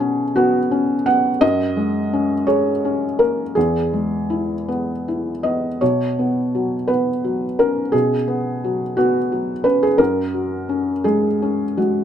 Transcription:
0.00 1.38 B2 soft
0.00 0.22 F#3 soft
0.00 0.37 B3 soft
0.00 0.57 C#4 soft
0.00 0.34 G#4 medium
0.36 0.93 B3 soft
0.36 1.07 F#4 medium
0.71 1.28 C#4 soft
1.06 1.42 B3 soft
1.06 1.42 F#5 medium
1.41 3.51 F#2 medium
1.41 2.47 D#5 loud
1.77 2.33 G#3 soft
2.13 2.69 C#4 soft
2.47 3.04 G#4 soft
2.47 3.18 C#5 medium
2.85 3.42 C#4 soft
3.19 3.56 A#3 soft
3.19 3.55 A#4 medium
3.55 5.77 E2 soft
3.55 4.68 G#4 medium
3.93 4.53 G#3 soft
4.30 4.90 E4 soft
4.68 5.29 B3 soft
5.08 5.67 E4 soft
5.43 5.81 B3 soft
5.43 5.80 D#5 medium
5.81 7.89 B2 soft
5.81 6.88 C#5 medium
6.19 6.75 B3 soft
6.55 7.10 F#3 soft
6.88 7.45 B3 soft
6.88 7.58 B4 medium
7.24 7.80 F#3 soft
7.59 8.15 C#4 soft
7.59 7.93 A#4 medium
7.92 9.95 B2 soft
7.92 8.95 G#4 medium
8.28 8.82 B3 soft
8.64 9.17 F#3 soft
8.97 9.52 B3 soft
8.97 9.65 F#4 medium
9.32 9.86 F#3 soft
9.64 9.99 C#4 soft
9.64 9.81 B4 medium
9.83 10.00 G#4 medium
9.98 12.04 F#2 soft
9.98 11.05 A#4 medium
10.34 10.91 F#3 soft
10.69 11.27 C#4 soft
11.04 11.64 G#3 soft
11.04 11.79 G#4 medium
11.42 12.03 C#4 soft
11.77 12.04 G#3 soft
11.77 12.04 F#4 soft

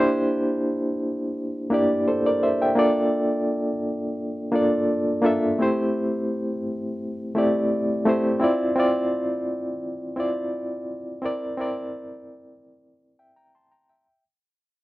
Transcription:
0.00 0.90 A#3 medium
0.00 0.90 D4 medium
0.00 0.91 E4 medium
0.00 0.91 G4 medium
0.00 0.92 C5 loud
1.70 2.19 A#3 medium
1.70 2.19 D4 medium
1.70 2.20 E4 medium
1.70 2.20 G4 medium
1.74 2.08 D5 medium
2.08 2.26 A4 medium
2.08 2.26 C5 medium
2.26 2.42 A#4 medium
2.26 2.42 D5 medium
2.43 2.61 C5 medium
2.43 2.61 E5 medium
2.62 2.95 E5 medium
2.62 2.95 G5 medium
2.75 3.72 A#3 medium
2.75 3.72 D4 medium
2.75 3.72 F4 medium
2.75 3.73 A4 medium
2.75 3.73 D5 loud
4.52 5.01 A#3 medium
4.52 5.01 D4 medium
4.52 5.02 F4 medium
4.52 5.02 A4 medium
4.52 5.03 D5 medium
5.22 5.48 A#3 medium
5.22 5.48 D4 medium
5.22 5.49 F4 medium
5.22 5.49 A4 medium
5.26 5.50 E5 medium
5.58 6.54 A3 medium
5.58 6.54 C4 medium
5.58 6.55 E4 medium
5.58 6.55 G4 medium
5.58 6.56 C5 medium
7.35 7.83 A3 medium
7.35 7.84 C4 medium
7.35 7.84 E4 medium
7.35 7.85 G4 medium
7.35 7.85 D5 medium
8.05 8.30 A3 medium
8.05 8.31 C4 medium
8.05 8.31 E4 medium
8.05 8.32 G4 medium
8.05 8.32 C5 medium
8.40 8.65 C4 medium
8.40 8.66 E4 medium
8.40 8.67 F4 medium
8.40 8.67 D5 medium
8.75 9.71 C4 medium
8.75 9.72 E4 medium
8.75 9.73 F4 medium
8.80 9.73 D5 medium
10.16 10.88 C4 medium
10.16 10.88 E4 medium
10.16 10.89 F4 medium
10.16 10.89 D5 medium
11.22 11.47 C4 medium
11.22 11.48 E4 medium
11.22 11.49 A#4 medium
11.22 11.49 D5 medium
11.57 12.53 C4 medium
11.57 12.54 E4 medium
11.57 12.55 A#4 medium
11.57 12.55 D5 medium
13.19 13.35 E5 soft
13.19 13.35 G5 medium
13.36 13.54 G5 medium
13.36 13.54 A#5 medium
13.55 13.71 A5 medium
13.55 13.70 C6 medium
13.71 13.88 G5 soft
13.71 13.89 A#5 medium
13.89 14.23 E5 medium
13.89 14.23 G5 medium

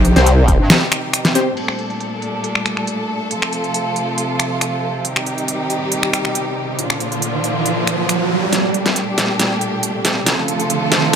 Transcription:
0.00 0.14 B1 loud
0.00 1.53 C3 medium
0.00 1.53 D#3 medium
0.00 1.53 G3 medium
0.00 1.53 D#4 medium
0.00 1.53 G4 medium
0.05 closed hi-hat medium
0.16 0.58 C2 loud
0.16 0.33 C4 loud
0.16 0.33 G4 medium
0.16 0.33 C5 loud
0.16 snare soft
0.16 closed hi-hat soft
0.26 closed hi-hat medium
0.48 kick medium
0.48 closed hi-hat medium
0.60 0.70 G2 loud
0.70 snare loud
0.70 closed hi-hat medium
0.92 finger snap medium
0.92 closed hi-hat medium
1.13 finger snap medium
1.13 closed hi-hat medium
1.25 snare soft
1.25 closed hi-hat soft
1.35 1.47 C4 medium
1.35 1.47 G4 medium
1.35 1.47 C5 loud
1.35 open hi-hat loud
1.57 3.29 A#2 medium
1.57 3.29 G3 medium
1.57 5.01 A3 medium
1.57 3.29 D4 medium
1.57 5.01 A4 medium
1.57 closed hi-hat medium
1.57 crash medium
1.68 finger snap medium
1.79 closed hi-hat soft
1.90 closed hi-hat soft
2.00 closed hi-hat medium
2.22 closed hi-hat soft
2.44 closed hi-hat medium
2.55 finger snap medium
2.66 finger snap medium
2.66 closed hi-hat medium
2.77 finger snap soft
2.87 closed hi-hat medium
3.31 6.75 C3 medium
3.31 5.03 F3 medium
3.31 5.03 F4 medium
3.31 closed hi-hat medium
3.42 finger snap medium
3.53 closed hi-hat medium
3.64 closed hi-hat soft
3.74 closed hi-hat medium
3.96 closed hi-hat soft
4.18 closed hi-hat medium
4.40 finger snap medium
4.40 closed hi-hat soft
4.61 finger snap soft
4.61 closed hi-hat medium
5.05 6.77 D#3 medium
5.05 6.77 G3 medium
5.05 6.77 D#4 medium
5.05 6.77 G4 medium
5.05 closed hi-hat medium
5.05 riser medium
5.16 finger snap medium
5.26 closed hi-hat soft
5.38 closed hi-hat soft
5.48 closed hi-hat medium
5.70 closed hi-hat soft
5.92 closed hi-hat medium
6.03 finger snap medium
6.13 finger snap medium
6.13 closed hi-hat medium
6.25 finger snap soft
6.35 closed hi-hat medium
6.79 8.51 A#2 medium
6.79 8.51 D3 medium
6.79 8.51 F3 medium
6.79 8.51 D4 medium
6.79 8.51 F4 medium
6.79 closed hi-hat medium
6.90 finger snap medium
7.00 closed hi-hat soft
7.12 closed hi-hat soft
7.22 closed hi-hat medium
7.44 closed hi-hat soft
7.66 closed hi-hat medium
7.87 finger snap medium
7.87 closed hi-hat soft
8.09 finger snap soft
8.09 closed hi-hat medium
8.53 10.25 A#2 medium
8.53 10.25 G3 medium
8.53 11.16 A3 medium
8.53 10.25 D4 medium
8.53 10.25 G4 medium
8.53 snare soft
8.53 closed hi-hat medium
8.53 riser medium
8.74 closed hi-hat soft
8.86 snare soft
8.86 closed hi-hat soft
8.96 closed hi-hat medium
9.18 snare medium
9.18 closed hi-hat medium
9.39 snare soft
9.39 closed hi-hat medium
9.61 closed hi-hat medium
9.83 closed hi-hat medium
10.05 snare medium
10.05 open hi-hat medium
10.26 11.16 C3 medium
10.26 11.16 F3 medium
10.26 11.16 F4 medium
10.26 11.16 A4 medium
10.26 snare medium
10.26 closed hi-hat medium
10.48 closed hi-hat medium
10.60 closed hi-hat soft
10.70 closed hi-hat medium
10.92 snare medium
10.92 closed hi-hat medium

